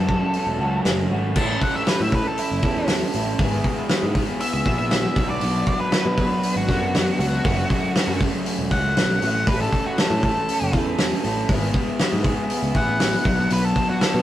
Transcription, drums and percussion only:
0.09 kick medium
0.34 open hi-hat soft
0.85 snare loud
0.85 open hi-hat soft
1.36 kick loud
1.36 crash loud
1.61 kick medium
1.61 open hi-hat medium
1.87 snare loud
1.87 open hi-hat medium
2.12 kick medium
2.12 open hi-hat medium
2.38 open hi-hat medium
2.62 kick medium
2.62 open hi-hat medium
2.88 snare loud
2.88 open hi-hat medium
3.13 open hi-hat medium
3.39 kick loud
3.39 open hi-hat medium
3.64 kick medium
3.64 open hi-hat medium
3.89 snare loud
3.89 open hi-hat medium
4.15 kick medium
4.15 open hi-hat medium
4.40 open hi-hat medium
4.66 kick medium
4.66 open hi-hat medium
4.91 snare loud
4.91 open hi-hat medium
5.16 kick loud
5.16 open hi-hat medium
5.41 open hi-hat medium
5.67 kick medium
5.67 open hi-hat medium
5.92 snare loud
5.92 open hi-hat medium
6.18 kick medium
6.18 open hi-hat soft
6.43 open hi-hat medium
6.69 kick medium
6.69 snare soft
6.69 open hi-hat medium
6.95 snare loud
6.95 open hi-hat medium
7.20 open hi-hat medium
7.45 kick loud
7.45 open hi-hat medium
7.70 kick medium
7.70 open hi-hat medium
7.95 snare loud
7.95 open hi-hat medium
8.21 kick medium
8.21 open hi-hat medium
8.46 open hi-hat medium
8.71 kick medium
8.71 open hi-hat medium
8.97 snare loud
8.97 open hi-hat medium
9.22 open hi-hat medium
9.47 kick loud
9.47 open hi-hat medium
9.73 kick medium
9.73 open hi-hat medium
9.98 snare loud
9.98 open hi-hat medium
10.23 kick medium
10.23 open hi-hat medium
10.49 open hi-hat medium
10.73 kick medium
10.73 open hi-hat medium
10.98 snare loud
10.98 open hi-hat medium
11.24 open hi-hat medium
11.49 kick loud
11.49 open hi-hat medium
11.74 kick medium
11.74 open hi-hat medium
11.99 snare loud
11.99 open hi-hat medium
12.24 kick medium
12.24 open hi-hat medium
12.50 open hi-hat medium
12.74 kick medium
12.74 open hi-hat medium
13.00 snare loud
13.00 open hi-hat medium
13.25 kick loud
13.25 open hi-hat medium
13.50 open hi-hat medium
13.76 kick medium
13.76 open hi-hat medium
14.01 snare loud
14.01 open hi-hat medium

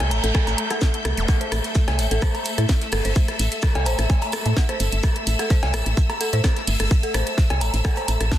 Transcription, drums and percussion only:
0.00 cross-stick soft
0.00 closed hi-hat soft
0.00 cowbell medium
0.11 closed hi-hat medium
0.11 low woodblock medium
0.11 shaker medium
0.24 closed hi-hat medium
0.35 kick loud
0.35 cross-stick medium
0.35 cowbell medium
0.35 shaker medium
0.47 closed hi-hat soft
0.47 low woodblock medium
0.47 shaker medium
0.58 closed hi-hat medium
0.58 low woodblock medium
0.70 cross-stick soft
0.70 closed hi-hat medium
0.70 shaker medium
0.81 kick loud
0.81 snare loud
0.81 shaker loud
0.94 closed hi-hat soft
1.05 cross-stick medium
1.05 closed hi-hat medium
1.05 shaker medium
1.17 closed hi-hat medium
1.28 kick loud
1.28 tambourine medium
1.28 shaker medium
1.41 closed hi-hat soft
1.52 cross-stick medium
1.52 closed hi-hat medium
1.52 tambourine loud
1.52 shaker medium
1.63 snare soft
1.63 closed hi-hat medium
1.63 tambourine soft
1.75 kick loud
1.75 snare loud
1.75 tambourine soft
1.75 shaker medium
1.88 cross-stick soft
1.88 snare soft
1.88 closed hi-hat soft
1.88 cowbell medium
1.99 snare soft
1.99 closed hi-hat medium
1.99 tambourine medium
1.99 shaker medium
2.11 closed hi-hat medium
2.11 tambourine soft
2.22 kick loud
2.22 cross-stick medium
2.22 tambourine medium
2.22 shaker medium
2.35 closed hi-hat soft
2.35 tambourine soft
2.35 low woodblock medium
2.45 closed hi-hat medium
2.45 tambourine loud
2.45 shaker medium
2.58 cross-stick soft
2.58 closed hi-hat medium
2.58 tambourine soft
2.69 kick loud
2.69 snare loud
2.69 tambourine medium
2.69 shaker medium
2.81 snare medium
2.81 closed hi-hat soft
2.92 cross-stick medium
2.92 closed hi-hat medium
2.92 open hi-hat medium
2.92 tambourine medium
3.05 closed hi-hat medium
3.05 tambourine soft
3.15 kick loud
3.15 tambourine medium
3.15 shaker medium
3.28 cross-stick soft
3.28 closed hi-hat soft
3.39 closed hi-hat loud
3.39 tambourine loud
3.39 shaker medium
3.52 closed hi-hat medium
3.52 tambourine soft
3.62 kick loud
3.62 cross-stick medium
3.62 snare loud
3.62 tambourine medium
3.62 shaker medium
3.75 closed hi-hat soft
3.75 cowbell loud
3.86 closed hi-hat loud
3.86 tambourine medium
3.86 low woodblock medium
3.86 shaker medium
3.98 cross-stick soft
3.98 closed hi-hat soft
3.98 closed hi-hat medium
3.98 tambourine soft
4.10 kick loud
4.10 tambourine medium
4.10 cowbell loud
4.10 shaker medium
4.22 closed hi-hat medium
4.22 closed hi-hat soft
4.22 tambourine soft
4.22 low woodblock medium
4.32 cross-stick medium
4.32 closed hi-hat loud
4.32 tambourine loud
4.32 low woodblock medium
4.32 shaker medium
4.46 closed hi-hat medium
4.46 tambourine soft
4.57 kick loud
4.57 snare loud
4.57 tambourine medium
4.57 shaker medium
4.69 cross-stick soft
4.69 closed hi-hat soft
4.80 closed hi-hat loud
4.80 tambourine medium
4.80 shaker medium
4.92 closed hi-hat medium
4.92 tambourine soft
5.03 kick loud
5.03 cross-stick medium
5.03 tambourine medium
5.03 shaker medium
5.16 closed hi-hat soft
5.27 closed hi-hat loud
5.27 tambourine loud
5.27 shaker medium
5.39 cross-stick soft
5.39 snare soft
5.39 closed hi-hat medium
5.39 tambourine soft
5.50 kick loud
5.50 snare loud
5.50 tambourine medium
5.50 shaker medium
5.62 snare soft
5.62 closed hi-hat soft
5.62 cowbell loud
5.74 cross-stick medium
5.74 snare soft
5.74 closed hi-hat loud
5.74 tambourine loud
5.74 shaker medium
5.86 closed hi-hat medium
5.86 tambourine soft
5.97 kick loud
5.97 tambourine medium
5.97 shaker medium
6.10 cross-stick soft
6.10 closed hi-hat soft
6.10 tambourine soft
6.10 low woodblock medium
6.21 closed hi-hat loud
6.21 tambourine loud
6.21 shaker medium
6.33 closed hi-hat medium
6.33 tambourine soft
6.44 kick loud
6.44 cross-stick medium
6.44 snare loud
6.44 tambourine medium
6.44 shaker loud
6.56 snare medium
6.56 closed hi-hat soft
6.67 closed hi-hat loud
6.67 open hi-hat medium
6.67 tambourine loud
6.80 cross-stick soft
6.80 closed hi-hat medium
6.80 tambourine soft
6.91 kick loud
6.91 tambourine medium
6.91 shaker medium
7.03 closed hi-hat soft
7.14 cross-stick medium
7.14 closed hi-hat loud
7.14 tambourine loud
7.14 shaker medium
7.27 closed hi-hat soft
7.27 tambourine soft
7.37 kick loud
7.37 snare loud
7.37 tambourine medium
7.37 shaker medium
7.50 cross-stick soft
7.50 closed hi-hat soft
7.50 cowbell medium
7.61 closed hi-hat loud
7.61 tambourine medium
7.61 low woodblock medium
7.61 shaker medium
7.73 closed hi-hat medium
7.73 closed hi-hat soft
7.73 tambourine soft
7.85 kick loud
7.85 cross-stick medium
7.85 tambourine medium
7.85 cowbell medium
7.85 shaker medium
7.96 closed hi-hat soft
7.96 low woodblock medium
7.97 closed hi-hat soft
7.97 tambourine soft
8.08 closed hi-hat loud
8.08 tambourine loud
8.08 low woodblock medium
8.08 shaker medium
8.20 cross-stick soft
8.20 closed hi-hat medium
8.20 tambourine soft
8.31 kick loud
8.31 snare loud
8.31 tambourine medium
8.31 shaker medium

